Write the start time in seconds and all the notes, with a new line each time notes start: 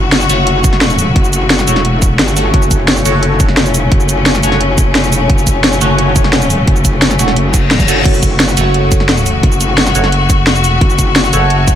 Already playing: F#1 C#3 A3 F#4
0.12 snare, closed hi-hat
0.21 shaker
0.30 F#1 A3 F#4 C#5, closed hi-hat, shaker
0.47 closed hi-hat
0.64 kick, closed hi-hat, shaker
0.73 snare
0.81 snare, closed hi-hat
0.90 shaker
0.99 open hi-hat, shaker
1.16 F#1, kick, closed hi-hat
1.24 shaker
1.33 closed hi-hat, shaker
1.50 snare, closed hi-hat
1.59 snare, shaker
1.68 E1 A3 F#4 C#5, closed hi-hat, shaker
1.76 snare
1.85 closed hi-hat
2.02 kick, closed hi-hat, shaker
2.19 G1, snare, closed hi-hat
2.28 shaker
2.36 A3 F#4 C#5, open hi-hat, shaker
2.54 F#1 C#4, kick, closed hi-hat
2.62 shaker
2.71 kick, closed hi-hat, shaker
2.88 snare, closed hi-hat
2.97 shaker
3.05 F#1 A3 F#4 C#5, closed hi-hat, shaker
3.23 closed hi-hat
3.40 kick, closed hi-hat, shaker
3.49 snare
3.57 snare, closed hi-hat
3.66 F1, shaker
3.74 open hi-hat, shaker
3.92 F#1, kick, closed hi-hat
4.00 shaker
4.09 closed hi-hat, shaker
4.26 snare, closed hi-hat
4.35 snare, shaker
4.43 F#1 A3 F#4 C#5, closed hi-hat, shaker
4.52 snare
4.61 closed hi-hat
4.78 kick, closed hi-hat, shaker
4.95 snare, closed hi-hat
5.03 F1, shaker
5.12 open hi-hat, shaker
5.30 F#1, kick, closed hi-hat
5.38 shaker
5.47 kick, closed hi-hat, shaker
5.64 snare, closed hi-hat
5.73 shaker
5.81 F#1 A3 F#4 C#5, closed hi-hat, shaker
5.99 closed hi-hat
6.16 kick, closed hi-hat, shaker
6.24 snare
6.33 snare, closed hi-hat
6.42 shaker
6.50 open hi-hat, shaker
6.67 F#1, kick, closed hi-hat
6.76 shaker
6.85 kick, closed hi-hat, shaker
7.02 snare, closed hi-hat
7.11 snare, shaker
7.19 E1 A3 F#4 C#5, snare, closed hi-hat, shaker
7.28 snare
7.36 F#1, closed hi-hat, reverse cymbal
7.54 kick, closed hi-hat, shaker
7.71 snare, closed hi-hat
7.80 kick, shaker
7.88 F#1 A3 F#4 C#5, open hi-hat, shaker
8.05 F#1 F#4, kick, closed hi-hat, crash
8.14 shaker
8.23 kick, closed hi-hat, shaker
8.40 snare, closed hi-hat
8.49 shaker
8.57 F#1 A3 F#4 C#5, closed hi-hat, shaker
8.74 closed hi-hat
8.92 kick, closed hi-hat, shaker
9.00 snare
9.09 snare, closed hi-hat
9.17 shaker
9.26 open hi-hat, shaker
9.43 F#1, kick, closed hi-hat
9.52 shaker
9.61 closed hi-hat, shaker
9.78 snare, closed hi-hat
9.87 snare, shaker
9.95 F#1 A3 F#4 C#5, closed hi-hat, shaker
10.04 snare
10.12 closed hi-hat
10.30 kick, closed hi-hat, shaker
10.47 snare, closed hi-hat
10.55 F1, shaker
10.64 open hi-hat, shaker
10.81 F#1, kick, closed hi-hat
10.90 shaker
10.99 kick, closed hi-hat, shaker
11.16 snare, closed hi-hat
11.24 shaker
11.33 F#1 A3 F#4 C#5, closed hi-hat, shaker
11.50 closed hi-hat
11.68 kick, closed hi-hat, shaker